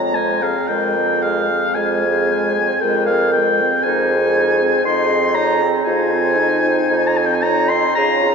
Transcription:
0.00 0.56 F2 medium
0.00 0.16 C4 soft
0.00 0.17 C#5 medium
0.00 0.16 A#5 medium
0.14 0.44 G#3 soft
0.14 0.43 C5 medium
0.14 0.44 G#5 medium
0.41 0.69 C4 soft
0.41 0.70 G#4 medium
0.41 0.69 F5 medium
0.68 1.63 F2 medium
0.68 0.98 G#3 medium
0.68 1.24 A#4 medium
0.68 1.24 G5 medium
0.97 1.25 C4 soft
1.22 1.52 G#3 medium
1.22 1.78 G#4 medium
1.22 1.76 F5 medium
1.51 1.77 C4 soft
1.74 2.71 F2 medium
1.74 2.06 G#3 soft
1.74 2.83 G#4 medium
1.74 2.83 C5 medium
1.74 2.82 G#5 medium
2.05 2.32 C4 soft
2.31 2.61 G#3 medium
2.60 2.85 C4 soft
2.81 3.73 F2 medium
2.81 3.84 A#4 medium
2.81 3.09 A#4 medium
2.81 3.05 G5 medium
2.85 3.13 G#3 medium
3.06 3.34 G#4 medium
3.06 3.32 F5 medium
3.11 3.40 C4 soft
3.32 3.85 A#4 medium
3.32 3.84 G5 medium
3.38 3.63 G#3 medium
3.62 3.86 C4 soft
3.82 4.74 F2 medium
3.82 4.83 G#4 medium
3.82 4.86 C5 medium
3.82 4.84 G#5 medium
3.87 4.12 D#4 medium
4.11 4.38 C4 soft
4.37 4.64 D#4 soft
4.62 4.86 C4 soft
4.84 5.74 F2 medium
4.84 5.13 D#4 soft
4.84 5.84 G#4 medium
4.84 5.36 D#5 medium
4.84 5.36 C6 medium
5.11 5.38 C4 medium
5.34 5.63 D#4 medium
5.34 5.68 C#5 medium
5.34 5.68 A#5 medium
5.62 5.86 C4 soft
5.85 6.79 F2 medium
5.85 6.14 D#4 medium
5.85 6.38 F4 medium
5.85 7.18 C5 medium
5.85 7.09 G#5 medium
6.13 6.40 C4 soft
6.36 7.69 D#4 medium
6.36 6.65 D#4 medium
6.64 6.90 C4 soft
6.91 7.85 F2 medium
6.91 7.19 D#4 medium
7.07 7.19 A#5 medium
7.17 7.46 C4 medium
7.17 7.27 G#5 medium
7.26 7.36 G5 medium
7.34 7.44 G#5 medium
7.43 7.72 D#4 medium
7.43 7.72 C#5 medium
7.43 7.71 A#5 loud
7.69 7.95 C4 medium
7.69 7.99 D#5 medium
7.69 7.95 C6 medium
7.95 8.35 C#3 medium
7.95 8.35 F4 medium
7.95 8.25 G#4 medium
7.95 8.35 C#5 medium
7.95 8.35 A#5 loud
8.24 8.35 F4 soft

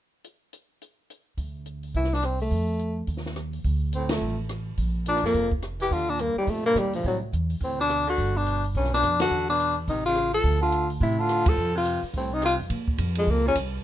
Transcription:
0.24 closed hi-hat soft
0.53 closed hi-hat soft
0.82 closed hi-hat soft
1.10 closed hi-hat soft
1.37 1.92 D2 medium
1.37 kick soft
1.37 open hi-hat soft
1.66 closed hi-hat soft
1.83 open hi-hat soft
1.94 2.48 C2 medium
1.94 2.16 E4 medium
1.94 kick soft
1.94 open hi-hat soft
2.04 snare soft
2.13 2.26 D4 medium
2.13 snare soft
2.23 2.41 C4 medium
2.23 cross-stick soft
2.23 closed hi-hat soft
2.40 3.05 A3 medium
2.40 open hi-hat soft
2.51 3.05 F2 medium
2.51 kick soft
2.51 open hi-hat soft
2.79 closed hi-hat soft
3.07 3.62 D#2 medium
3.07 kick soft
3.07 open hi-hat soft
3.17 snare soft
3.26 snare soft
3.36 cross-stick medium
3.36 closed hi-hat soft
3.53 open hi-hat soft
3.64 4.19 D2 medium
3.64 kick soft
3.64 open hi-hat soft
3.93 4.10 A2 medium
3.93 4.10 C4 medium
3.93 closed hi-hat soft
4.09 4.37 F2 medium
4.09 4.37 A3 medium
4.09 snare medium
4.09 ride medium
4.21 4.75 A1 medium
4.49 cross-stick medium
4.49 closed hi-hat soft
4.77 5.20 A#1 medium
4.77 kick soft
4.77 open hi-hat soft
5.06 5.22 A#2 medium
5.06 5.24 D4 medium
5.06 closed hi-hat soft
5.16 snare soft
5.23 5.34 F2 medium
5.23 5.50 F2 medium
5.23 5.51 A#3 medium
5.23 snare soft
5.34 5.88 F1 medium
5.34 kick soft
5.34 open hi-hat soft
5.51 kick soft
5.62 cross-stick medium
5.62 closed hi-hat soft
5.80 5.94 E3 medium
5.80 5.94 G4 medium
5.80 open hi-hat soft
5.90 6.33 D#2 medium
5.90 6.11 D3 medium
5.90 6.11 F4 medium
5.90 kick soft
5.90 open hi-hat soft
6.09 6.23 A#2 medium
6.09 6.22 D4 medium
6.19 6.37 G2 medium
6.19 6.37 A#3 medium
6.19 closed hi-hat soft
6.36 6.51 D#2 medium
6.36 6.51 G3 medium
6.36 muted upright bass stroke soft
6.47 6.65 F2 medium
6.47 6.74 A#2 medium
6.47 6.65 A3 medium
6.47 kick soft
6.47 open hi-hat soft
6.65 6.79 G2 medium
6.65 6.80 A#3 medium
6.75 6.93 D#2 medium
6.75 7.02 A#2 medium
6.75 6.94 G3 medium
6.75 cross-stick medium
6.75 closed hi-hat soft
6.93 7.04 D2 medium
6.93 7.05 F3 medium
6.93 open hi-hat soft
7.04 7.21 C2 medium
7.04 7.31 A2 medium
7.04 7.17 F#3 medium
7.04 kick soft
7.04 open hi-hat soft
7.33 7.59 E2 medium
7.33 closed hi-hat soft
7.50 open hi-hat soft
7.61 8.15 D2 medium
7.61 7.78 A2 medium
7.61 7.79 C4 medium
7.61 kick soft
7.61 open hi-hat soft
7.78 8.05 B2 medium
7.78 8.06 D4 medium
7.90 cross-stick medium
7.90 closed hi-hat medium
8.07 8.37 D3 medium
8.07 8.39 F#4 medium
8.07 open hi-hat soft
8.18 8.72 G1 medium
8.18 kick soft
8.18 open hi-hat soft
8.36 8.64 B2 medium
8.36 8.65 D4 medium
8.46 closed hi-hat soft
8.64 open hi-hat soft
8.75 9.01 B1 medium
8.75 8.91 G2 medium
8.75 8.92 C#4 medium
8.75 kick soft
8.75 open hi-hat soft
8.84 snare soft
8.93 9.19 B2 medium
8.93 9.20 D4 medium
8.93 snare soft
9.03 9.29 F2 medium
9.03 cross-stick medium
9.03 closed hi-hat soft
9.19 9.46 D3 medium
9.19 9.47 F#4 medium
9.19 snare medium
9.19 ride medium
9.31 9.85 E2 medium
9.49 9.75 B2 medium
9.49 9.75 D4 medium
9.60 closed hi-hat soft
9.88 10.42 A1 medium
9.88 10.04 C3 medium
9.88 10.05 D#4 medium
9.88 kick soft
9.88 open hi-hat soft
10.06 10.32 C#3 medium
10.06 10.32 F4 medium
10.15 cross-stick medium
10.15 closed hi-hat medium
10.33 10.59 F3 medium
10.33 10.60 A4 medium
10.33 open hi-hat soft
10.44 10.98 D2 medium
10.44 kick soft
10.44 open hi-hat soft
10.61 10.88 D3 medium
10.61 10.89 F4 medium
10.72 closed hi-hat soft
10.90 open hi-hat soft
11.01 11.55 A2 medium
11.01 11.20 C3 medium
11.01 11.21 E4 medium
11.01 kick soft
11.01 open hi-hat soft
11.19 11.48 D3 medium
11.19 11.51 F4 medium
11.29 cross-stick medium
11.29 closed hi-hat soft
11.46 11.74 F3 medium
11.46 11.76 A4 medium
11.46 kick medium
11.46 ride medium
11.57 12.00 F2 medium
11.74 12.01 C3 medium
11.74 12.03 F4 medium
11.85 closed hi-hat soft
12.03 muted upright bass stroke soft
12.03 open hi-hat soft
12.13 12.56 C2 medium
12.13 12.34 A2 medium
12.13 12.35 C4 medium
12.13 kick soft
12.13 open hi-hat soft
12.32 12.43 C3 medium
12.32 12.44 D#4 medium
12.42 12.59 C3 medium
12.42 12.55 F4 medium
12.42 cross-stick medium
12.42 closed hi-hat soft
12.59 12.69 F2 medium
12.59 open hi-hat soft
12.70 12.98 A#2 medium
12.70 kick soft
12.70 ride medium
12.88 kick soft
12.98 13.26 F2 medium
12.98 kick soft
12.98 hi-hat pedal soft
12.98 ride medium
13.15 13.29 F2 medium
13.15 13.32 G#3 medium
13.15 ride medium
13.27 13.55 C#2 medium
13.27 13.44 F2 medium
13.27 13.46 A#3 medium
13.27 kick soft
13.45 13.55 A#2 medium
13.45 13.57 C#4 medium
13.55 13.83 C2 medium
13.55 kick soft
13.55 hi-hat pedal medium
13.55 ride medium

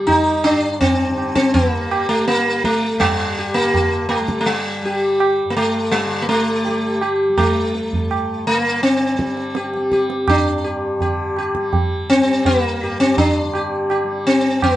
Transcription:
0.00 0.47 G2 soft
0.00 1.10 D3 soft
0.00 1.72 G3 medium
0.07 0.45 D#4 medium
0.07 tabla tin medium
0.07 tabla ge medium
0.44 2.96 G2 medium
0.44 0.80 D4 medium
0.44 tabla na medium
0.81 1.34 C4 medium
0.81 tabla tin medium
0.81 tabla ge medium
1.10 3.58 D3 medium
1.18 tabla na soft
1.35 1.54 C4 medium
1.35 tabla ke medium
1.54 2.08 A#3 medium
1.54 tabla tin medium
1.54 tabla ge medium
1.72 2.35 G3 soft
1.91 2.25 G4 soft
1.91 tabla na medium
2.09 2.27 A3 medium
2.27 2.64 A#3 medium
2.27 tabla te medium
2.35 4.20 G3 soft
2.46 tabla te medium
2.64 3.02 A3 medium
2.64 tabla ke soft
2.83 tabla te soft
2.97 5.44 G2 soft
2.97 3.57 G3 medium
3.01 tabla na medium
3.01 tabla ge medium
3.39 3.72 G4 soft
3.54 6.05 D3 soft
3.54 4.08 A#3 medium
3.74 tabla tin medium
3.74 tabla ge medium
4.09 4.40 A3 medium
4.09 tabla na soft
4.20 4.82 G3 medium
4.28 tabla ke medium
4.41 4.47 A3 medium
4.46 5.52 G3 medium
4.46 tabla tin medium
4.82 6.67 G3 medium
4.82 5.18 G4 soft
5.20 tabla na medium
5.45 7.91 G2 medium
5.50 5.56 A#3 medium
5.57 5.94 A3 medium
5.57 tabla na medium
5.92 6.22 G3 medium
5.92 tabla te medium
6.05 8.52 D3 medium
6.22 6.28 A#3 medium
6.29 6.98 A3 medium
6.29 tabla te medium
6.65 7.29 G3 soft
6.65 7.00 G4 soft
6.65 tabla tin medium
7.01 7.36 G4 soft
7.01 tabla na medium
7.29 9.14 G3 medium
7.38 8.47 A3 medium
7.38 tabla na medium
7.38 tabla ge medium
7.74 tabla te medium
7.91 10.36 G2 soft
7.91 tabla ge soft
8.11 tabla na medium
8.47 8.82 A#3 medium
8.52 10.97 D3 medium
8.83 10.29 C4 medium
8.83 tabla te medium
9.01 tabla te medium
9.14 9.75 G3 soft
9.19 tabla ke medium
9.37 tabla te medium
9.55 9.90 G4 soft
9.55 tabla te medium
9.74 11.57 G3 medium
9.74 tabla te soft
9.92 10.26 G4 soft
9.92 tabla ke soft
10.10 tabla te medium
10.28 11.34 D4 medium
10.28 tabla na medium
10.28 tabla ge medium
10.36 12.80 G2 soft
10.64 10.98 G4 soft
10.97 13.43 D3 soft
10.97 tabla tin medium
10.97 tabla ge medium
11.02 11.35 G4 soft
11.37 11.72 G4 soft
11.37 tabla na soft
11.55 12.19 G3 soft
11.55 tabla ke soft
11.73 tabla tin medium
11.73 tabla ge medium
12.10 12.46 C4 medium
12.19 14.04 G3 medium
12.45 13.00 A#3 medium
12.45 tabla tin medium
12.45 tabla ge medium
12.81 14.76 G2 medium
12.81 13.16 G4 soft
13.00 13.18 C4 medium
13.18 14.26 D4 medium
13.18 tabla tin medium
13.18 tabla ge medium
13.43 14.76 D3 medium
13.54 13.88 G4 soft
13.54 tabla na medium
13.90 14.24 G4 soft
13.90 tabla na medium
14.04 14.65 G3 medium
14.27 14.63 C4 medium
14.62 14.76 G3 medium
14.62 14.76 A#3 medium
14.62 tabla na medium
14.62 tabla ge medium

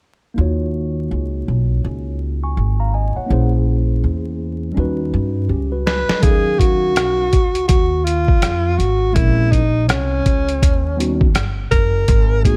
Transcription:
0.34 1.07 D#2 medium
0.34 3.25 A#3 medium
0.34 3.26 D#4 medium
0.34 3.26 F4 medium
0.39 3.27 F#4 medium
0.39 2.19 C#5 medium
1.11 1.46 C#2 medium
1.48 1.83 B1 medium
1.84 2.54 C#2 medium
2.44 2.78 G#5 soft
2.44 2.78 C#6 medium
2.57 3.13 G#1 medium
2.80 2.93 F5 medium
2.80 2.93 A#5 medium
2.94 3.16 D#5 medium
2.94 3.15 G#5 medium
3.16 3.51 C#5 soft
3.16 3.51 F#5 medium
3.16 muted upright bass stroke soft
3.26 4.72 A#3 medium
3.26 4.73 C#4 medium
3.26 4.73 E4 medium
3.30 4.00 A#1 medium
3.30 4.74 G#4 medium
3.30 4.75 C5 medium
4.04 4.73 E2 medium
4.72 6.18 G3 medium
4.72 5.47 C#4 medium
4.72 5.48 D#4 medium
4.77 5.12 D#2 medium
4.77 5.49 F#4 medium
4.77 5.50 B4 medium
5.14 5.48 G2 medium
5.49 6.06 C#2 medium
5.49 5.71 C#4 soft
5.49 5.71 G4 medium
5.72 6.07 F#4 soft
5.72 6.07 B4 medium
5.87 6.24 B4 medium
5.87 snare loud
6.09 6.22 A4 soft
6.09 6.44 D#5 medium
6.09 muted upright bass stroke soft
6.09 snare medium
6.20 6.96 D#2 medium
6.20 7.26 F#3 medium
6.20 7.26 C#4 medium
6.20 7.27 D#4 medium
6.20 6.61 G#4 loud
6.20 6.31 A4 medium
6.20 7.27 F5 medium
6.20 kick loud
6.20 closed hi-hat medium
6.31 7.31 A#4 medium
6.59 7.67 F#4 loud
6.59 kick medium
6.59 closed hi-hat medium
6.96 7.33 B1 medium
6.96 cross-stick loud
6.96 closed hi-hat medium
7.33 7.68 C#2 medium
7.33 kick medium
7.33 closed hi-hat medium
7.55 closed hi-hat soft
7.68 8.39 D#2 medium
7.68 8.06 F#4 medium
7.68 kick medium
7.68 closed hi-hat medium
8.05 8.80 F4 medium
8.05 closed hi-hat medium
8.28 kick medium
8.42 8.77 F2 medium
8.42 cross-stick loud
8.42 closed hi-hat medium
8.78 9.14 G#1 medium
8.78 9.16 F#4 medium
8.78 closed hi-hat soft
9.13 9.88 A#1 loud
9.13 9.60 G#3 medium
9.13 9.60 C4 medium
9.13 9.61 C#4 medium
9.13 9.53 E4 medium
9.13 9.61 E4 medium
9.13 9.62 A#4 medium
9.13 kick loud
9.13 closed hi-hat medium
9.51 9.88 D#4 medium
9.51 kick medium
9.51 closed hi-hat medium
9.88 10.23 C2 medium
9.88 11.31 C#4 medium
9.88 cross-stick loud
9.88 closed hi-hat medium
10.26 10.61 C#2 medium
10.26 kick medium
10.26 closed hi-hat medium
10.48 closed hi-hat soft
10.62 11.32 D#2 loud
10.62 kick medium
10.62 closed hi-hat medium
10.96 11.26 G3 medium
10.96 11.26 B3 medium
10.96 11.27 C#4 medium
10.96 11.27 D#4 medium
10.96 11.27 F#4 medium
10.96 closed hi-hat medium
11.21 kick loud
11.34 11.70 G1 medium
11.34 cross-stick loud
11.34 closed hi-hat medium
11.71 12.07 F#1 medium
11.71 12.41 A#4 medium
11.71 kick medium
11.71 closed hi-hat medium
12.08 12.57 G#1 loud
12.08 kick loud
12.08 closed hi-hat medium
12.43 12.57 G#3 medium
12.43 12.57 A#3 medium
12.43 12.57 B3 medium
12.43 12.57 D#4 medium
12.43 12.57 F#4 medium
12.43 12.57 G#4 medium
12.43 kick medium
12.43 closed hi-hat medium

